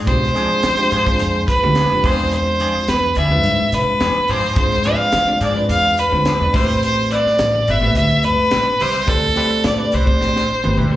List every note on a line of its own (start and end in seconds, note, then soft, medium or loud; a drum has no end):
0.00 0.11 C4 soft
0.00 0.11 D4 soft
0.00 0.11 G#4 medium
0.06 0.31 B2 medium
0.06 0.26 G#3 medium
0.06 0.27 C4 medium
0.06 0.27 D4 medium
0.06 0.27 F4 medium
0.06 0.27 G4 medium
0.06 1.44 C5 loud
0.06 kick loud
0.06 closed hi-hat medium
0.23 muted clean electric guitar stroke soft
0.23 snare soft
0.34 0.51 F3 medium
0.34 0.64 G#3 medium
0.34 0.64 C4 medium
0.34 0.51 C4 medium
0.34 0.64 D4 medium
0.34 0.50 D4 medium
0.34 0.64 F4 medium
0.34 0.65 G#4 medium
0.34 0.50 G#4 medium
0.34 closed hi-hat soft
0.51 muted clean electric guitar stroke soft
0.63 0.76 F3 medium
0.63 snare loud
0.63 closed hi-hat medium
0.77 0.97 G#3 medium
0.77 0.97 C4 medium
0.77 0.97 D4 medium
0.77 0.97 F4 medium
0.77 0.98 G4 medium
0.77 muted clean electric guitar stroke soft
0.91 1.04 G#2 medium
0.91 1.06 F3 medium
0.91 1.06 C4 medium
0.91 1.06 D4 medium
0.91 1.05 G#4 medium
0.91 closed hi-hat medium
1.06 1.45 G#3 medium
1.06 1.45 C4 medium
1.06 1.45 D4 medium
1.06 1.45 F4 medium
1.06 1.45 G#4 medium
1.06 muted clean electric guitar stroke soft
1.06 kick medium
1.19 1.44 F2 medium
1.19 muted clean electric guitar stroke soft
1.19 closed hi-hat medium
1.35 muted clean electric guitar stroke soft
1.48 2.06 B4 medium
1.48 muted clean electric guitar stroke soft
1.48 kick medium
1.48 closed hi-hat medium
1.62 1.74 D2 medium
1.62 1.81 G#3 medium
1.62 1.82 C4 medium
1.62 1.82 D4 medium
1.62 1.82 F4 medium
1.62 1.82 G4 medium
1.75 1.91 F3 medium
1.75 1.91 C4 medium
1.75 1.90 D4 medium
1.75 1.90 G#4 soft
1.75 snare medium
1.75 closed hi-hat medium
1.90 2.03 F2 medium
1.90 2.01 G#3 medium
1.90 2.02 C4 soft
1.90 2.03 D4 medium
1.90 2.02 F4 medium
1.90 2.05 G4 medium
1.90 muted clean electric guitar stroke soft
2.03 2.64 E2 medium
2.03 2.19 F3 medium
2.03 2.94 G#3 medium
2.03 2.94 C4 medium
2.03 2.19 C4 medium
2.03 2.94 D4 medium
2.03 2.18 D4 medium
2.03 2.94 F4 medium
2.03 2.18 G#4 medium
2.03 2.95 C5 medium
2.03 2.33 C5 medium
2.03 kick medium
2.03 open hi-hat medium
2.19 2.36 C4 soft
2.19 2.36 D4 soft
2.19 2.35 G#4 soft
2.31 2.91 C5 medium
2.31 closed hi-hat medium
2.47 muted clean electric guitar stroke soft
2.60 2.75 F3 medium
2.60 2.75 C4 medium
2.60 2.75 D4 medium
2.60 2.75 G#4 medium
2.60 closed hi-hat soft
2.75 muted upright bass stroke soft
2.75 muted clean electric guitar stroke soft
2.88 3.12 E2 medium
2.88 3.17 B4 medium
2.88 snare medium
2.88 closed hi-hat medium
3.03 muted clean electric guitar stroke soft
3.15 3.44 D2 medium
3.15 3.31 F3 soft
3.15 3.31 C4 soft
3.15 3.31 D4 medium
3.15 3.31 G#4 medium
3.15 3.76 E5 medium
3.15 closed hi-hat soft
3.31 4.08 G#3 medium
3.31 4.08 C4 medium
3.31 4.08 D4 medium
3.31 4.08 F4 medium
3.31 4.08 B4 medium
3.31 muted clean electric guitar stroke soft
3.43 3.57 G#2 medium
3.43 muted clean electric guitar stroke soft
3.43 closed hi-hat medium
3.59 muted upright bass stroke soft
3.59 muted clean electric guitar stroke soft
3.72 3.85 C3 medium
3.72 4.32 B4 medium
3.72 muted clean electric guitar stroke soft
3.72 snare soft
3.72 closed hi-hat medium
3.87 muted upright bass stroke soft
4.00 4.13 E2 medium
4.00 4.16 F3 medium
4.00 4.16 C4 medium
4.00 4.16 D4 soft
4.00 4.16 G#4 medium
4.00 snare medium
4.00 closed hi-hat medium
4.16 muted upright bass stroke soft
4.16 muted clean electric guitar stroke soft
4.28 4.42 G#2 medium
4.28 4.44 F3 medium
4.28 4.44 C4 medium
4.28 4.43 D4 medium
4.28 4.42 G#4 medium
4.28 4.57 C5 medium
4.28 open hi-hat medium
4.43 4.61 C4 soft
4.43 4.61 D4 soft
4.43 4.60 G#4 soft
4.55 4.81 G#2 loud
4.55 4.76 G#3 medium
4.55 4.77 C4 medium
4.55 4.77 D4 medium
4.55 4.77 F4 medium
4.55 4.77 C5 medium
4.55 4.96 C5 medium
4.55 kick loud
4.55 closed hi-hat medium
4.71 muted clean electric guitar stroke soft
4.71 snare soft
4.84 5.00 F3 medium
4.84 5.15 G#3 medium
4.84 5.14 C4 medium
4.84 5.00 C4 medium
4.84 5.15 D4 medium
4.84 4.99 D4 medium
4.84 5.15 F4 medium
4.84 4.99 G#4 medium
4.84 5.15 B4 medium
4.84 closed hi-hat medium
4.95 5.41 F5 medium
5.00 muted clean electric guitar stroke soft
5.12 5.26 E3 medium
5.12 snare loud
5.12 closed hi-hat medium
5.27 5.47 G#3 medium
5.27 5.47 C4 medium
5.27 5.47 D4 medium
5.27 5.47 F4 medium
5.27 5.47 D5 medium
5.27 muted clean electric guitar stroke soft
5.40 5.54 G#2 medium
5.40 5.57 F3 medium
5.40 5.56 C4 medium
5.40 5.55 D4 medium
5.40 5.55 G#4 medium
5.40 5.68 D5 medium
5.40 closed hi-hat medium
5.55 5.94 G#3 medium
5.55 5.94 C4 medium
5.55 5.95 D4 medium
5.55 5.95 F4 medium
5.55 5.95 B4 medium
5.55 muted clean electric guitar stroke soft
5.69 5.93 E2 medium
5.69 6.01 F5 loud
5.69 muted clean electric guitar stroke soft
5.69 closed hi-hat medium
5.85 muted clean electric guitar stroke soft
5.97 6.57 B4 medium
5.97 muted clean electric guitar stroke soft
5.97 closed hi-hat medium
6.11 6.24 D2 medium
6.11 6.31 G#3 medium
6.11 6.31 C4 medium
6.11 6.32 D4 medium
6.11 6.32 F4 medium
6.11 6.32 C5 medium
6.25 6.42 F3 soft
6.25 6.41 C4 medium
6.25 6.41 D4 medium
6.25 6.41 G#4 medium
6.25 snare medium
6.25 closed hi-hat medium
6.40 6.52 E2 medium
6.40 6.54 G#3 medium
6.40 6.52 C4 medium
6.40 6.55 D4 medium
6.40 6.55 F4 soft
6.40 6.55 D5 medium
6.40 muted clean electric guitar stroke soft
6.53 7.15 A1 medium
6.53 6.70 G3 medium
6.53 7.44 A3 medium
6.53 7.45 C4 medium
6.53 6.70 C4 medium
6.53 7.45 E4 medium
6.53 6.69 E4 medium
6.53 7.45 G4 medium
6.53 7.45 B4 medium
6.53 6.69 B4 medium
6.53 6.83 C5 medium
6.53 kick medium
6.53 open hi-hat medium
6.70 6.87 C4 soft
6.70 6.86 E4 soft
6.70 6.86 B4 soft
6.83 7.10 C5 medium
6.83 closed hi-hat medium
6.98 muted clean electric guitar stroke soft
7.11 7.26 G3 medium
7.11 7.26 C4 medium
7.11 7.26 E4 medium
7.11 7.25 B4 medium
7.11 7.72 D5 medium
7.11 closed hi-hat soft
7.26 muted upright bass stroke soft
7.26 muted clean electric guitar stroke soft
7.26 snare soft
7.38 7.63 A1 medium
7.38 snare loud
7.38 closed hi-hat medium
7.55 muted clean electric guitar stroke soft
7.67 7.95 G1 medium
7.67 7.83 G3 soft
7.67 7.83 C4 medium
7.67 7.82 E4 medium
7.67 7.82 B4 medium
7.67 7.96 E5 medium
7.67 closed hi-hat medium
7.81 8.59 A3 medium
7.81 8.59 C4 medium
7.81 8.59 E4 medium
7.81 8.59 G4 medium
7.81 8.60 B4 medium
7.81 muted clean electric guitar stroke soft
7.95 8.08 D2 medium
7.95 8.25 E5 loud
7.95 muted clean electric guitar stroke soft
7.95 closed hi-hat medium
8.10 muted clean electric guitar stroke soft
8.10 muted upright bass stroke soft
8.23 8.37 G2 medium
8.23 8.83 B4 loud
8.23 muted clean electric guitar stroke soft
8.23 closed hi-hat medium
8.39 muted upright bass stroke soft
8.51 8.65 A1 medium
8.51 8.67 G3 medium
8.51 8.66 C4 medium
8.51 8.66 E4 medium
8.51 8.66 B4 medium
8.51 snare loud
8.51 closed hi-hat medium
8.67 muted clean electric guitar stroke soft
8.67 muted upright bass stroke soft
8.80 9.08 C2 medium
8.80 8.95 G3 medium
8.80 8.95 C4 medium
8.80 8.95 E4 medium
8.80 8.94 B4 medium
8.80 9.10 C5 medium
8.80 open hi-hat medium
8.95 9.12 C4 soft
8.95 9.12 E4 soft
8.95 9.11 B4 soft
9.06 9.32 D2 medium
9.06 9.27 A3 medium
9.06 9.28 C4 medium
9.06 9.28 E4 medium
9.06 9.28 G4 medium
9.06 9.65 A4 medium
9.06 9.28 D5 medium
9.06 kick loud
9.06 closed hi-hat medium
9.24 muted clean electric guitar stroke soft
9.36 9.52 G3 medium
9.36 9.65 A3 medium
9.36 9.65 C4 medium
9.36 9.51 C4 medium
9.36 9.66 E4 medium
9.36 9.51 E4 medium
9.36 9.66 G4 medium
9.36 9.51 B4 medium
9.36 9.66 D5 medium
9.36 closed hi-hat soft
9.52 muted clean electric guitar stroke soft
9.64 9.77 A2 medium
9.64 9.96 D5 medium
9.64 snare loud
9.64 closed hi-hat medium
9.77 9.97 A3 medium
9.77 9.98 C4 medium
9.77 9.98 E4 medium
9.77 9.98 G4 medium
9.77 9.98 B4 medium
9.77 muted clean electric guitar stroke soft
9.92 10.06 C2 medium
9.92 10.08 G3 soft
9.92 10.08 C4 medium
9.92 10.08 E4 medium
9.92 10.07 B4 medium
9.92 10.96 C5 medium
9.92 closed hi-hat medium
10.05 10.45 A3 medium
10.05 10.45 C4 medium
10.05 10.45 E4 medium
10.05 10.45 G4 medium
10.05 10.46 D5 medium
10.05 muted clean electric guitar stroke soft
10.05 kick medium
10.20 10.45 A1 medium
10.20 muted clean electric guitar stroke soft
10.20 snare soft
10.36 muted clean electric guitar stroke soft
10.36 snare medium
10.49 muted clean electric guitar stroke soft
10.63 10.76 G1 medium
10.63 10.83 A3 medium
10.63 10.83 C4 medium
10.63 10.83 E4 medium
10.63 10.83 G4 medium
10.63 10.83 B4 medium
10.63 mid tom medium
10.77 10.96 D2 medium
10.77 10.92 G3 medium
10.77 10.92 C4 medium
10.77 10.92 E4 medium
10.77 10.92 B4 medium
10.77 mid tom medium
10.91 10.96 A3 medium
10.91 10.96 C4 medium
10.91 10.96 E4 medium
10.91 10.96 G4 medium
10.91 10.96 B4 medium
10.91 muted clean electric guitar stroke soft